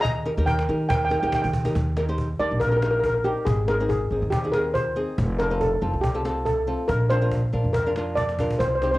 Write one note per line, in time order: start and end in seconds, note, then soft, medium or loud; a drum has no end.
0.01 0.35 D#2 loud
0.01 0.43 D#5 medium
0.01 0.47 A#5 loud
0.01 cajon bass loud
0.26 0.33 D#4 medium
0.26 0.33 G4 medium
0.26 0.33 A#4 medium
0.26 cajon slap medium
0.38 0.66 D#2 loud
0.38 0.57 D#4 medium
0.38 0.57 G4 medium
0.38 0.57 A#4 medium
0.38 cajon slap soft
0.46 0.87 A#4 medium
0.46 0.88 G5 medium
0.46 cajon bass medium
0.59 cajon slap medium
0.69 0.88 D#3 medium
0.69 0.95 D#4 medium
0.69 0.95 G4 medium
0.69 0.95 A#4 medium
0.69 cajon slap soft
0.80 cajon slap soft
0.89 1.20 D#2 medium
0.89 0.97 A#4 medium
0.89 0.96 G5 medium
0.89 cajon bass loud
0.89 cajon slap medium
0.97 1.04 G5 medium
1.05 1.11 G5 medium
1.10 1.18 D#4 medium
1.10 1.18 G4 medium
1.10 1.18 A#4 medium
1.10 1.19 G5 medium
1.10 cajon slap medium
1.20 1.42 D#2 medium
1.20 1.48 D#4 medium
1.20 1.48 G4 medium
1.20 1.48 A#4 medium
1.20 1.26 G5 medium
1.20 cajon slap soft
1.27 1.34 G5 medium
1.33 1.41 G5 medium
1.33 cajon bass medium
1.33 cajon slap medium
1.42 1.73 D#3 medium
1.42 1.49 G5 medium
1.42 cajon bass medium
1.54 cajon bass loud
1.65 1.75 D#4 medium
1.65 1.75 G4 medium
1.65 1.75 A#4 medium
1.65 cajon bass medium
1.75 2.36 D#2 loud
1.75 cajon bass loud
1.97 2.03 D#4 medium
1.97 2.04 G4 medium
1.97 2.04 A#4 medium
1.97 cajon slap medium
2.08 2.27 D#4 medium
2.08 2.28 G4 medium
2.08 2.28 C5 medium
2.08 cajon slap soft
2.18 cajon bass medium
2.39 2.50 D#2 medium
2.39 2.59 D#4 medium
2.39 2.59 G4 medium
2.39 2.59 A#4 medium
2.39 2.61 D5 loud
2.39 cajon slap soft
2.51 3.33 A#1 medium
2.51 cajon slap soft
2.60 2.68 A#4 medium
2.60 cajon bass loud
2.69 2.78 D#4 medium
2.69 2.78 G4 medium
2.69 2.76 A#4 medium
2.69 2.78 A#4 medium
2.77 2.82 A#4 medium
2.83 3.09 D#4 medium
2.83 3.08 G4 medium
2.83 3.09 A#4 medium
2.83 2.90 A#4 medium
2.83 cajon slap medium
2.91 2.99 A#4 medium
2.91 cajon slap soft
3.00 3.05 A#4 medium
3.04 3.13 A#4 medium
3.04 cajon bass medium
3.14 3.22 A#4 medium
3.24 3.46 D#4 medium
3.24 3.47 G4 medium
3.24 3.46 G4 medium
3.24 3.46 A#4 medium
3.24 cajon slap soft
3.36 cajon slap soft
3.45 4.07 G#1 loud
3.45 3.66 G#4 medium
3.45 cajon bass loud
3.68 3.75 C4 medium
3.68 3.75 D#4 medium
3.68 3.75 G#4 medium
3.68 3.88 A#4 medium
3.68 cajon slap medium
3.79 3.99 C4 medium
3.79 3.99 D#4 medium
3.79 3.99 G#4 medium
3.79 cajon slap soft
3.89 4.33 G#4 medium
3.89 cajon bass medium
4.10 4.21 G#1 medium
4.10 4.31 C4 medium
4.10 4.31 D#4 medium
4.10 4.31 G#4 medium
4.10 cajon slap soft
4.22 5.04 D#2 medium
4.22 cajon slap soft
4.30 4.51 G4 medium
4.30 cajon bass loud
4.44 4.50 C4 medium
4.44 4.50 D#4 medium
4.44 4.50 G#4 medium
4.52 4.80 C4 medium
4.52 4.79 D#4 medium
4.52 4.80 G#4 medium
4.52 4.75 A#4 medium
4.52 cajon slap medium
4.65 cajon slap soft
4.74 5.14 C5 medium
4.74 cajon bass medium
4.96 5.18 C4 medium
4.96 5.18 D#4 medium
4.96 5.18 G#4 medium
4.96 cajon slap soft
5.08 cajon slap soft
5.18 5.78 F1 loud
5.18 cajon bass loud
5.39 5.46 C4 medium
5.39 5.46 F4 medium
5.39 5.47 A4 medium
5.39 5.61 A#4 medium
5.39 cajon slap medium
5.50 5.70 C4 medium
5.50 5.70 F4 medium
5.50 5.70 A4 medium
5.50 cajon slap soft
5.61 6.05 A4 medium
5.61 cajon bass medium
5.82 5.93 F1 medium
5.82 6.01 C4 medium
5.82 6.01 F4 medium
5.82 6.02 A4 medium
5.82 cajon slap soft
5.93 6.75 C2 medium
5.93 cajon slap soft
6.01 6.42 G4 medium
6.01 cajon bass loud
6.14 6.21 C4 medium
6.14 6.21 F4 medium
6.14 6.21 A4 medium
6.25 6.51 C4 medium
6.25 6.51 F4 medium
6.25 6.51 A4 medium
6.25 cajon slap medium
6.37 cajon slap soft
6.45 6.90 A4 medium
6.45 cajon bass medium
6.67 6.89 C4 medium
6.67 6.89 F4 medium
6.67 6.89 A4 medium
6.67 cajon slap soft
6.79 cajon slap soft
6.88 7.49 A#1 loud
6.88 7.08 A#4 medium
6.88 cajon bass loud
7.10 7.17 D4 medium
7.10 7.18 F4 medium
7.10 7.18 A#4 medium
7.10 7.70 C5 loud
7.10 cajon slap medium
7.21 7.41 D4 medium
7.21 7.41 F4 medium
7.21 7.41 A#4 medium
7.21 cajon slap soft
7.32 cajon bass medium
7.53 7.64 A#1 medium
7.53 7.73 D4 medium
7.53 7.73 F4 medium
7.53 7.73 A#4 medium
7.53 cajon slap soft
7.64 8.46 F2 medium
7.64 cajon slap soft
7.73 8.18 A#4 medium
7.73 cajon bass loud
7.86 7.92 D4 medium
7.86 7.92 F4 medium
7.86 7.93 A#4 medium
7.96 8.22 D4 medium
7.96 8.23 F4 medium
7.96 8.22 A#4 medium
7.96 cajon slap medium
8.07 cajon slap soft
8.15 8.56 D5 medium
8.15 cajon bass medium
8.15 cajon slap medium
8.29 cajon slap medium
8.39 8.60 D4 medium
8.39 8.61 F4 medium
8.39 8.61 A#4 medium
8.39 cajon bass medium
8.50 cajon bass medium
8.59 8.98 C2 loud
8.59 8.67 C5 medium
8.59 cajon bass loud
8.68 8.74 C5 medium
8.75 8.81 C5 medium
8.82 8.89 C4 medium
8.82 8.89 D#4 medium
8.82 8.89 G4 medium
8.82 8.90 C5 medium
8.82 cajon slap medium
8.91 8.98 C4 medium
8.91 8.98 D#4 medium
8.91 8.98 G4 medium
8.91 8.96 C5 medium
8.91 cajon slap soft